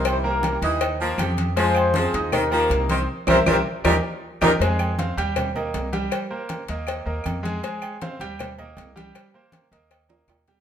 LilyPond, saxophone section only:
\new Staff \with { instrumentName = "Saxophone section" } { \clef bass \time 4/4 \key ees \mixolydian \tempo 4 = 158 ees4. e4 f4. | f4 f4 ees8 f4 ees8 | r8 <c e g>8 <c e g>8 r8 <bes, ees g>8 r4 <bes, ees g>8 | r1 |
r1 | r1 | r1 | }